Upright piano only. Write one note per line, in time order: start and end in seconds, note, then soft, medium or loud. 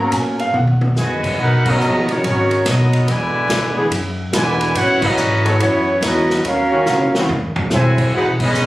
0.00 0.36 F#3 soft
0.00 0.36 A#3 soft
0.00 0.37 B3 medium
0.00 0.37 C#4 medium
0.00 0.12 A#5 medium
0.14 0.39 G#5 medium
0.40 0.54 F5 medium
0.56 1.28 F#5 medium